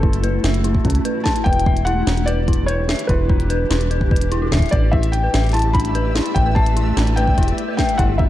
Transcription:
Already playing: acid bass F#1, ambient pad A3 E4 F#4, felt piano A4
0.03 synth bell E4, kick
0.13 closed hi-hat
0.23 synth bell B4, closed hi-hat
0.44 acid bass F#1, synth bell E5, snare, closed hi-hat
0.54 closed hi-hat
0.64 synth bell E4, closed hi-hat
0.75 kick
0.85 acid bass C#2, synth bell C#4, kick, closed hi-hat
0.90 closed hi-hat
0.95 closed hi-hat
1.05 synth bell B4, closed hi-hat
1.24 synth bell E4, felt piano A5, kick, snare, closed hi-hat
1.36 closed hi-hat
1.44 acid bass E1, ambient pad D4 G4, synth bell B4, felt piano G5, kick, closed hi-hat
1.53 closed hi-hat
1.60 closed hi-hat
1.66 synth bell E5, kick
1.77 closed hi-hat
1.85 synth bell E4, felt piano F#5, closed hi-hat
2.07 acid bass E1, synth bell D4, snare, closed hi-hat
2.17 closed hi-hat
2.26 synth bell B4, felt piano D5, closed hi-hat
2.48 synth bell E4, kick, closed hi-hat
2.53 closed hi-hat
2.66 synth bell B4, felt piano C#5, closed hi-hat
2.89 synth bell E5, snare, closed hi-hat
2.92 closed hi-hat
2.96 closed hi-hat
2.99 closed hi-hat
3.07 acid bass E1, synth bell E4, felt piano B4, kick, closed hi-hat
3.29 synth bell D4, kick
3.40 closed hi-hat
3.50 synth bell B4, closed hi-hat
3.70 acid bass E1, synth bell E4, snare, closed hi-hat
3.81 closed hi-hat
3.91 synth bell B4, closed hi-hat
4.01 kick
4.11 synth bell B4, kick
4.16 closed hi-hat
4.21 closed hi-hat
4.32 synth bell E4, closed hi-hat
4.42 synth bell F#4
4.52 acid bass D1, synth bell E5, kick, snare, closed hi-hat
4.55 kick, closed hi-hat
4.57 kick, closed hi-hat
4.60 kick, closed hi-hat
4.66 closed hi-hat
4.69 acid bass A1, ambient pad A3 B4 D5, synth bell B4, felt piano D5, synth texture E5, kick, closed hi-hat
4.73 closed hi-hat
4.92 synth bell E4, felt piano E5, kick
5.03 closed hi-hat
5.12 felt piano G5, closed hi-hat
5.23 synth bell B4
5.34 acid bass A1, synth bell E5, snare, closed hi-hat
5.44 closed hi-hat
5.47 closed hi-hat
5.49 closed hi-hat
5.52 synth bell E4, felt piano A5, closed hi-hat
5.54 closed hi-hat
5.57 closed hi-hat
5.59 closed hi-hat
5.62 closed hi-hat
5.73 synth bell D4, felt piano B5, kick, closed hi-hat
5.80 closed hi-hat
5.85 closed hi-hat
5.95 synth bell B4, closed hi-hat
6.15 synth bell E4, snare, closed hi-hat
6.26 closed hi-hat
6.35 acid bass A1, felt piano G5, kick, closed hi-hat
6.46 synth bell B4
6.55 synth bell E5, felt piano A5, kick
6.66 closed hi-hat
6.76 synth bell E4, closed hi-hat
6.97 acid bass A1, synth bell D4, snare, closed hi-hat
7.07 closed hi-hat
7.16 synth bell B4, felt piano G5, closed hi-hat
7.28 kick
7.38 acid bass E1, synth bell E4, kick, closed hi-hat
7.43 closed hi-hat
7.48 closed hi-hat
7.58 closed hi-hat
7.68 synth bell B4
7.77 synth bell E5, felt piano G5, kick, snare, closed hi-hat
7.89 closed hi-hat
7.98 acid bass G1, ambient pad G3 D4 F#4, synth bell E4, felt piano F#5, kick, closed hi-hat
8.18 synth bell D4, felt piano E5, kick

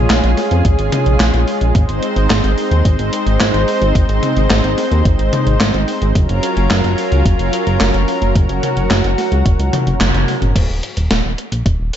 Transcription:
Already playing: analog synth pad G#3 C#4 F4 G#4
0.10 analog synth bass A#1, snare, clap, closed hi-hat
0.24 analog synth bass A#1, closed hi-hat
0.37 snare, open hi-hat
0.51 analog synth bass F2, closed hi-hat
0.65 analog synth bass A#1, kick, closed hi-hat
0.79 analog synth bass G#1, closed hi-hat
0.92 closed hi-hat, mid tom
1.06 analog synth bass A#1, closed hi-hat
1.20 analog synth bass A#1, snare, clap, closed hi-hat
1.34 analog synth bass A#1, closed hi-hat
1.47 open hi-hat
1.61 analog synth bass A#1, closed hi-hat
1.75 analog synth bass G#1, analog synth pad C4 D#4 C5, kick, closed hi-hat
1.89 analog synth bass G#1, closed hi-hat
2.03 closed hi-hat
2.16 analog synth bass G#1, closed hi-hat
2.30 analog synth bass G#1, snare, clap, closed hi-hat
2.44 analog synth bass G#1, closed hi-hat
2.58 open hi-hat
2.71 analog synth bass D#2, closed hi-hat
2.85 analog synth bass G#1, kick, closed hi-hat
2.99 analog synth bass G#1, closed hi-hat
3.13 closed hi-hat
3.27 analog synth bass G#1, closed hi-hat
3.40 analog synth bass G#1, snare, clap, closed hi-hat
3.54 analog synth bass G#1, closed hi-hat
3.68 open hi-hat
3.82 analog synth bass G#1, closed hi-hat
3.95 analog synth bass G#1, kick, closed hi-hat
4.09 analog synth bass G#1, closed hi-hat
4.23 closed hi-hat, mid tom
4.37 analog synth bass G#1, closed hi-hat
4.50 analog synth bass G#1, snare, clap, closed hi-hat
4.64 analog synth bass G#1, closed hi-hat
4.78 snare, open hi-hat
4.92 analog synth bass D#2, closed hi-hat
5.05 analog synth bass G#1, kick, closed hi-hat
5.19 analog synth bass G#1, closed hi-hat
5.33 closed hi-hat, mid tom
5.47 analog synth bass G#1, closed hi-hat
5.60 analog synth bass G#1, snare, clap, closed hi-hat
5.74 analog synth bass G#1, closed hi-hat
5.88 open hi-hat
6.02 analog synth bass G#1, closed hi-hat
6.15 analog synth bass F#1, analog synth pad F#3 C#4 F4 A#4, kick, closed hi-hat
6.29 analog synth bass F#1, closed hi-hat
6.43 closed hi-hat
6.57 analog synth bass F#1, closed hi-hat
6.70 analog synth bass F#1, snare, clap, closed hi-hat
6.84 analog synth bass F#1, closed hi-hat
6.98 open hi-hat
7.12 analog synth bass C#2, closed hi-hat
7.25 analog synth bass F#1, kick, closed hi-hat
7.39 analog synth bass F#1, closed hi-hat
7.53 closed hi-hat
7.67 analog synth bass F#1, closed hi-hat
7.81 analog synth bass F#1, snare, clap, closed hi-hat
7.94 analog synth bass F#1, closed hi-hat
8.08 open hi-hat
8.22 analog synth bass F#1, closed hi-hat
8.35 analog synth bass F#1, analog synth pad F#4, kick, closed hi-hat
8.49 analog synth bass F#1, closed hi-hat
8.63 closed hi-hat, mid tom
8.77 analog synth bass F#1, closed hi-hat
8.91 analog synth bass F#1, snare, clap, closed hi-hat
9.04 analog synth bass F#1, closed hi-hat
9.18 snare, open hi-hat
9.32 analog synth bass C#2, closed hi-hat
9.46 analog synth bass F#1, kick, closed hi-hat
9.59 analog synth bass C#2, closed hi-hat
9.73 closed hi-hat, mid tom, high tom
9.87 analog synth bass F#1, closed hi-hat
10.01 analog synth bass F#1, snare, clap, closed hi-hat, mid tom
10.14 analog synth bass F#1, closed hi-hat, mid tom
10.28 open hi-hat
10.42 analog synth bass F#1, closed hi-hat, mid tom
10.56 analog synth bass D#1, kick, closed hi-hat, crash
10.69 analog synth bass D#1
10.83 closed hi-hat
10.97 analog synth bass D#1, closed hi-hat
11.11 analog synth bass D#1, snare, closed hi-hat
11.24 analog synth bass D#1
11.38 closed hi-hat
11.52 analog synth bass A#1, closed hi-hat
11.66 analog synth bass D#1, kick, closed hi-hat
11.80 analog synth bass D#1
11.93 closed hi-hat

